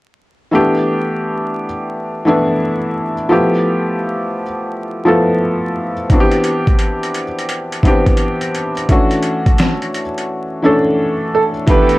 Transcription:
0.51 felt piano E3 A3 B3 D4 G4
2.25 felt piano E3 A3 B3 D4 E4
3.29 felt piano F3 A3 B3 E4 G4
5.05 felt piano F3 A3 B3 E4 A4
6.10 felt piano E3 B3 C4 D4 F#4, kick, closed hi-hat
6.20 felt piano G4
6.31 closed hi-hat
6.44 closed hi-hat
6.67 kick, closed hi-hat
6.79 closed hi-hat
7.03 closed hi-hat
7.14 closed hi-hat
7.39 closed hi-hat
7.49 closed hi-hat
7.72 closed hi-hat
7.83 felt piano E3 B3 C4 D4, kick, closed hi-hat
7.87 felt piano G4
8.06 kick, closed hi-hat
8.17 closed hi-hat
8.41 closed hi-hat
8.55 closed hi-hat
8.77 closed hi-hat
8.89 felt piano E3 A3 C#4 D4 F#4, kick, closed hi-hat
9.11 closed hi-hat
9.23 closed hi-hat
9.46 kick, closed hi-hat
9.58 snare, closed hi-hat
9.82 closed hi-hat
9.94 closed hi-hat
10.18 closed hi-hat
10.62 felt piano E3 A3 C#4 D4 A4
11.35 upright piano A4
11.67 felt piano E3 A3 B3 D4 G4, pipe organ A3 E4 G4 A4, upright piano B4, kick, closed hi-hat
11.89 closed hi-hat

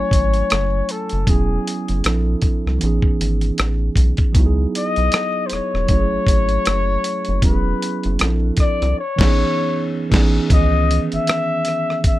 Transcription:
Already playing: tine electric piano F#3 A3 C#4 E4 G#5, muted trumpet C#5
0.11 analog synth bass G#1, kick, closed hi-hat
0.34 closed hi-hat
0.50 analog synth bass F#1, cross-stick, closed hi-hat
0.89 muted trumpet A4, closed hi-hat
1.09 analog synth bass F#1, closed hi-hat
1.26 analog synth bass E1, tine electric piano F#3 B3 C#4 E4 G#4, muted trumpet G#4, kick, closed hi-hat
1.67 closed hi-hat
1.88 analog synth bass F#1, closed hi-hat
2.04 analog synth bass A#1, tine electric piano F3 C4 D4 E4 A4, cross-stick, closed hi-hat
2.42 analog synth bass C2, kick, closed hi-hat
2.67 analog synth bass C2, cross-stick
2.79 tine electric piano E3 B3 C#4, closed hi-hat
2.83 analog synth bass A1, tine electric piano D#4 G#4
3.02 analog synth bass G#1, kick
3.21 analog synth bass G#1, closed hi-hat
3.41 closed hi-hat
3.58 analog synth bass A1, cross-stick, closed hi-hat
3.96 analog synth bass B1, kick, closed hi-hat
4.17 kick, closed hi-hat
4.33 analog synth bass C#2, tine electric piano F#3 B3 D#4, kick, closed hi-hat
4.38 tine electric piano E4 F#4
4.46 tine electric piano G#4
4.75 muted trumpet D#5, closed hi-hat
4.96 analog synth bass B1, closed hi-hat
5.12 cross-stick, closed hi-hat
5.46 muted trumpet C5, closed hi-hat
5.52 analog synth bass E1, muted trumpet C#5, cross-stick
5.74 analog synth bass E1, cross-stick
5.86 analog synth bass F#1, tine electric piano F#3 A3 C#4, kick, closed hi-hat
5.92 tine electric piano E4 G4
6.00 tine electric piano G#4
6.13 analog synth bass G#1
6.27 analog synth bass G#1, kick, closed hi-hat
6.49 closed hi-hat
6.65 analog synth bass F#1, cross-stick, closed hi-hat
7.04 closed hi-hat
7.25 analog synth bass F#1, closed hi-hat
7.42 analog synth bass E1, tine electric piano F#3 B3 C#4 E4 G4, muted trumpet B4, kick, closed hi-hat
7.52 tine electric piano G#4
7.82 closed hi-hat
8.03 analog synth bass F#1, closed hi-hat
8.19 analog synth bass A#1, tine electric piano F3 C4 C#4 E4 A4, cross-stick, closed hi-hat
8.27 tine electric piano D4
8.57 analog synth bass C2, muted trumpet D5, kick, cross-stick, closed hi-hat
8.82 analog synth bass C2, cross-stick, closed hi-hat
8.99 muted trumpet C#5
9.16 analog synth bass A1, tine electric piano E3 B3 C#4, kick, crash
9.21 tine electric piano D#4 G#4, snare
10.09 analog synth bass A1, tine electric piano E3 B3 C#4, kick, crash
10.14 tine electric piano D#4 G#4, snare
10.48 analog synth bass C#2, tine electric piano E3 B3 C#4, kick, closed hi-hat
10.53 tine electric piano D#3 G#4, muted trumpet D#5
10.91 closed hi-hat
11.12 analog synth bass G#1, muted trumpet E5, closed hi-hat
11.27 cross-stick, closed hi-hat
11.65 cross-stick, closed hi-hat
11.90 cross-stick
12.04 analog synth bass G#1, muted trumpet E5, kick, closed hi-hat

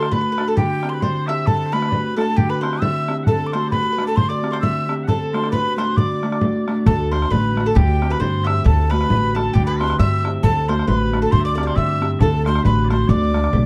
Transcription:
Already playing: harp D3 A3 D4 E4 F#4 A4, mandolin A4, bagpipes C5, tin whistle C6
0.03 bodhran
0.11 harp A2, mandolin B4, bagpipes B4, tin whistle B5, bodhran
0.21 mandolin B4
0.32 mandolin B4
0.38 harp D4 F#4 A4, bodhran
0.47 bagpipes A4, mandolin A4, tin whistle A5
0.56 harp D3, bagpipes G4, mandolin G4, tin whistle G5, bodhran
0.83 harp C4 E4 G4, bodhran
0.89 bagpipes B4, tin whistle C6
0.94 tin whistle B5
1.01 harp D3, bagpipes C5, mandolin C5, tin whistle C6, bodhran
1.26 harp C4 E4 G4, bagpipes E5, mandolin E5, tin whistle E6, bodhran
1.46 harp D3, bagpipes A4, mandolin A4, tin whistle A5, bodhran
1.66 bagpipes C5
1.72 harp A3 D4 F#4, mandolin B4, bagpipes B4, tin whistle B5, bodhran
1.82 bodhran
1.89 harp A2, bagpipes B4 D5, bodhran
2.16 harp A3 D4 F#4, mandolin A4, bagpipes A4, tin whistle A5, bodhran
2.36 harp D3, bagpipes G4, mandolin G4, tin whistle G5, bodhran
2.50 mandolin B4, bagpipes B4, tin whistle B5
2.61 harp C4 E4 G4, mandolin C5, tin whistle C6, bodhran
2.73 bodhran
2.81 harp D3, mandolin E5, bagpipes E5, tin whistle E6, bodhran
3.08 harp C4 E4 G4, bodhran
3.23 bagpipes A4 F#5, tin whistle A5, bodhran
3.28 harp D3, mandolin A4
3.47 tin whistle D6
3.53 harp A3 D4 F#4, mandolin C5, tin whistle C6, bodhran
3.68 bagpipes B4 D5, tin whistle B5
3.72 harp A2, mandolin B4, bodhran
3.83 mandolin B4
3.92 mandolin B4
3.98 harp A3 D4 F#4, bodhran
4.04 mandolin A4, bagpipes D5, tin whistle A5
4.08 bagpipes A4
4.16 harp D3, mandolin C5, bagpipes C5, tin whistle C6, bodhran
4.29 bagpipes D5, mandolin D5, tin whistle D6
4.43 harp C4 E4 G4, bodhran
4.51 mandolin C5 D5, tin whistle C6, bodhran
4.61 harp D3, bagpipes E5, mandolin E5, tin whistle E6, bodhran
4.88 harp C4 E4 G4, bodhran
5.03 bagpipes F#5
5.08 harp D3, bagpipes A4, mandolin A4, tin whistle A5, bodhran
5.33 harp A3 D4 F#4, bagpipes C5, tin whistle C6, bodhran
5.44 bodhran
5.49 harp A2, mandolin B4, bagpipes D5, tin whistle B5, bodhran
5.53 bagpipes B4
5.77 harp A3 D4 F#4, mandolin C5, tin whistle C6, bodhran
5.97 harp D3, bagpipes D5, mandolin D5, tin whistle D6, bodhran
6.23 harp A3 D4 F#4, bodhran
6.32 bodhran
6.41 harp A2, bodhran
6.68 harp A3 D4 F#4, bodhran
6.86 upright bass D2, harp D3, mandolin A4, bagpipes A4, tin whistle A5, bodhran
7.11 harp A3 D4 F#4, mandolin C5, bagpipes C5, tin whistle C6, bodhran
7.22 bodhran
7.30 upright bass A1, harp A3, mandolin B4, bagpipes B4, tin whistle B5, bodhran
7.56 harp A3 D4, bodhran
7.60 harp F#4
7.66 mandolin A4, bagpipes A4, tin whistle A5
7.75 upright bass D2, harp D3, mandolin G4, bagpipes G4, tin whistle G5, bodhran
8.02 harp C4 E4 G4, bodhran
8.10 mandolin B4, bagpipes B4, tin whistle B5, bodhran
8.20 upright bass G2, harp D3, mandolin C5, bagpipes C5, tin whistle C6, bodhran
8.44 harp C4 E4 G4, mandolin E5, bagpipes E5 F#5, tin whistle E6, bodhran
8.64 upright bass D2, harp D3, mandolin A4, bagpipes A4, tin whistle A5, bodhran
8.90 harp A3 D4 F#4, mandolin B4, bagpipes B4, tin whistle B5, bodhran
9.01 bodhran
9.10 upright bass A1, harp A3, bodhran
9.35 harp A3 D4 F#4, mandolin A4, bagpipes A4, tin whistle A5, bodhran
9.53 upright bass D2, harp D3, mandolin G4, bagpipes G4, tin whistle G5, bodhran
9.63 mandolin B4, bagpipes B4 D5, tin whistle B5
9.79 harp C4 E4 G4, tin whistle C6, bodhran
9.90 bodhran
9.99 upright bass G2, harp D3, bagpipes E5, mandolin E5, tin whistle E6, bodhran
10.25 harp C4 E4 G4, bodhran
10.43 upright bass D2, harp D3, mandolin A4, bagpipes A4, tin whistle A5, bodhran
10.68 harp A3 D4 F#4, bagpipes C5, mandolin C5, tin whistle C6, bodhran
10.79 bodhran
10.87 upright bass A1, harp A3, mandolin B4, bagpipes B4, tin whistle B5, bodhran
11.13 harp A3 D4 F#4, bodhran
11.22 mandolin A4, bagpipes A4, tin whistle A5
11.31 upright bass D2, harp D3, bagpipes C5, mandolin C5, tin whistle C6, bodhran
11.40 bagpipes D5 E5
11.45 mandolin D5, tin whistle D6
11.55 harp C4 E4 G4, mandolin D5, bodhran
11.63 bagpipes C5, mandolin D5
11.67 tin whistle C6, bodhran
11.75 upright bass G2, harp D3, bagpipes E5, mandolin E5, tin whistle E6, bodhran
12.01 harp C4 E4 G4, bodhran
12.20 upright bass D2, harp D3, bagpipes A4, mandolin A4, tin whistle A5, bodhran
12.45 harp A3 D4 F#4, bagpipes C5, mandolin C5, tin whistle C6, bodhran
12.55 bodhran
12.63 upright bass A1, harp A3, bagpipes B4, mandolin B4, tin whistle B5, bodhran
12.84 bagpipes D5
12.88 harp A3 D4 F#4, bagpipes C5, mandolin C5, tin whistle C6, bodhran
13.08 upright bass D2, harp D3, bagpipes D5, mandolin D5, tin whistle D6, bodhran
13.34 harp A3 D4 F#4, bodhran
13.44 bodhran
13.53 upright bass B1, harp A3, bodhran

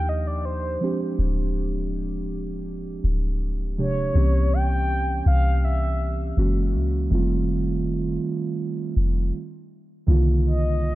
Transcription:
Already playing: 808-style bass D#2, synth keys F3 A#3 D4 D#4 G4, soft synth lead G5
0.09 soft synth lead D#5
0.27 soft synth lead D5
0.45 soft synth lead C5
0.81 synth keys F3 G#3 C4 D4 G4
1.19 808-style bass D1
3.04 808-style bass D1
3.78 synth keys C3 F3 G#3 D4 G4, soft synth lead C#5
4.14 808-style bass C2, synth keys E3 A#3 C4 C#4 G4
4.53 soft synth lead G5
5.26 808-style bass C2, soft synth lead F5
5.64 soft synth lead E5
6.37 808-style bass F#1, synth keys E3 G#3 A#3 C#4 F#4
6.74 808-style bass C#2
7.10 808-style bass F1, synth keys D#3 G3 A3 C4 F4
8.97 808-style bass F1
10.07 808-style bass C2, synth keys D3 D#3 G3 A#3 F4
10.46 soft synth lead D#5

